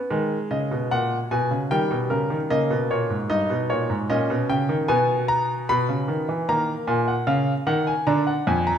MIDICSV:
0, 0, Header, 1, 2, 480
1, 0, Start_track
1, 0, Key_signature, 5, "minor"
1, 0, Tempo, 795756
1, 65, Time_signature, 4, 2, 24, 8
1, 5296, End_track
2, 0, Start_track
2, 0, Title_t, "Grand piano"
2, 0, Program_c, 0, 0
2, 0, Note_on_c, 0, 59, 58
2, 62, Note_off_c, 0, 59, 0
2, 63, Note_on_c, 0, 56, 74
2, 64, Note_on_c, 0, 51, 75
2, 215, Note_off_c, 0, 51, 0
2, 306, Note_on_c, 0, 49, 69
2, 306, Note_on_c, 0, 75, 76
2, 424, Note_off_c, 0, 49, 0
2, 430, Note_on_c, 0, 47, 62
2, 457, Note_off_c, 0, 75, 0
2, 546, Note_off_c, 0, 47, 0
2, 551, Note_on_c, 0, 78, 90
2, 552, Note_on_c, 0, 46, 73
2, 700, Note_off_c, 0, 46, 0
2, 700, Note_off_c, 0, 78, 0
2, 791, Note_on_c, 0, 47, 76
2, 791, Note_on_c, 0, 80, 78
2, 907, Note_off_c, 0, 47, 0
2, 910, Note_on_c, 0, 49, 64
2, 940, Note_off_c, 0, 80, 0
2, 1005, Note_off_c, 0, 56, 0
2, 1027, Note_off_c, 0, 49, 0
2, 1031, Note_on_c, 0, 79, 93
2, 1033, Note_on_c, 0, 51, 80
2, 1034, Note_on_c, 0, 55, 75
2, 1148, Note_off_c, 0, 51, 0
2, 1149, Note_on_c, 0, 47, 67
2, 1179, Note_off_c, 0, 79, 0
2, 1266, Note_off_c, 0, 47, 0
2, 1267, Note_on_c, 0, 49, 68
2, 1267, Note_on_c, 0, 70, 76
2, 1385, Note_off_c, 0, 49, 0
2, 1388, Note_on_c, 0, 51, 69
2, 1416, Note_off_c, 0, 70, 0
2, 1497, Note_off_c, 0, 55, 0
2, 1505, Note_off_c, 0, 51, 0
2, 1511, Note_on_c, 0, 75, 98
2, 1512, Note_on_c, 0, 58, 75
2, 1513, Note_on_c, 0, 49, 76
2, 1627, Note_off_c, 0, 49, 0
2, 1631, Note_on_c, 0, 47, 69
2, 1659, Note_off_c, 0, 75, 0
2, 1747, Note_off_c, 0, 47, 0
2, 1752, Note_on_c, 0, 46, 67
2, 1753, Note_on_c, 0, 73, 72
2, 1867, Note_off_c, 0, 46, 0
2, 1871, Note_on_c, 0, 44, 63
2, 1901, Note_off_c, 0, 73, 0
2, 1976, Note_off_c, 0, 58, 0
2, 1986, Note_off_c, 0, 44, 0
2, 1988, Note_on_c, 0, 75, 90
2, 1989, Note_on_c, 0, 43, 69
2, 1990, Note_on_c, 0, 63, 76
2, 2105, Note_off_c, 0, 43, 0
2, 2110, Note_on_c, 0, 47, 63
2, 2137, Note_off_c, 0, 75, 0
2, 2226, Note_off_c, 0, 47, 0
2, 2229, Note_on_c, 0, 46, 64
2, 2230, Note_on_c, 0, 73, 85
2, 2345, Note_off_c, 0, 46, 0
2, 2350, Note_on_c, 0, 44, 64
2, 2378, Note_off_c, 0, 73, 0
2, 2454, Note_off_c, 0, 63, 0
2, 2465, Note_off_c, 0, 44, 0
2, 2471, Note_on_c, 0, 75, 93
2, 2472, Note_on_c, 0, 46, 74
2, 2473, Note_on_c, 0, 61, 78
2, 2586, Note_off_c, 0, 46, 0
2, 2594, Note_on_c, 0, 47, 71
2, 2618, Note_off_c, 0, 75, 0
2, 2707, Note_off_c, 0, 47, 0
2, 2711, Note_on_c, 0, 49, 81
2, 2711, Note_on_c, 0, 79, 91
2, 2826, Note_off_c, 0, 49, 0
2, 2829, Note_on_c, 0, 51, 76
2, 2859, Note_off_c, 0, 79, 0
2, 2936, Note_off_c, 0, 61, 0
2, 2945, Note_off_c, 0, 51, 0
2, 2946, Note_on_c, 0, 59, 84
2, 2946, Note_on_c, 0, 80, 96
2, 2948, Note_on_c, 0, 47, 81
2, 3095, Note_off_c, 0, 80, 0
2, 3187, Note_on_c, 0, 82, 100
2, 3336, Note_off_c, 0, 82, 0
2, 3414, Note_off_c, 0, 47, 0
2, 3433, Note_on_c, 0, 83, 104
2, 3434, Note_on_c, 0, 47, 86
2, 3547, Note_off_c, 0, 47, 0
2, 3552, Note_on_c, 0, 49, 72
2, 3665, Note_off_c, 0, 49, 0
2, 3667, Note_on_c, 0, 51, 69
2, 3783, Note_off_c, 0, 51, 0
2, 3792, Note_on_c, 0, 52, 65
2, 3881, Note_off_c, 0, 59, 0
2, 3894, Note_off_c, 0, 83, 0
2, 3905, Note_off_c, 0, 52, 0
2, 3913, Note_on_c, 0, 58, 80
2, 3914, Note_on_c, 0, 51, 73
2, 3914, Note_on_c, 0, 82, 89
2, 4059, Note_off_c, 0, 51, 0
2, 4059, Note_off_c, 0, 82, 0
2, 4147, Note_on_c, 0, 46, 86
2, 4147, Note_on_c, 0, 80, 68
2, 4262, Note_off_c, 0, 80, 0
2, 4268, Note_on_c, 0, 78, 70
2, 4295, Note_off_c, 0, 46, 0
2, 4383, Note_off_c, 0, 78, 0
2, 4385, Note_on_c, 0, 49, 100
2, 4385, Note_on_c, 0, 77, 86
2, 4533, Note_off_c, 0, 49, 0
2, 4533, Note_off_c, 0, 77, 0
2, 4624, Note_on_c, 0, 51, 95
2, 4625, Note_on_c, 0, 78, 85
2, 4741, Note_off_c, 0, 78, 0
2, 4747, Note_on_c, 0, 80, 73
2, 4773, Note_off_c, 0, 51, 0
2, 4844, Note_off_c, 0, 58, 0
2, 4862, Note_off_c, 0, 80, 0
2, 4866, Note_on_c, 0, 50, 93
2, 4866, Note_on_c, 0, 82, 79
2, 4869, Note_on_c, 0, 62, 85
2, 4982, Note_off_c, 0, 82, 0
2, 4987, Note_on_c, 0, 78, 69
2, 5015, Note_off_c, 0, 50, 0
2, 5102, Note_off_c, 0, 78, 0
2, 5110, Note_on_c, 0, 41, 91
2, 5111, Note_on_c, 0, 80, 77
2, 5225, Note_off_c, 0, 80, 0
2, 5229, Note_on_c, 0, 82, 83
2, 5257, Note_off_c, 0, 41, 0
2, 5296, Note_off_c, 0, 62, 0
2, 5296, Note_off_c, 0, 82, 0
2, 5296, End_track
0, 0, End_of_file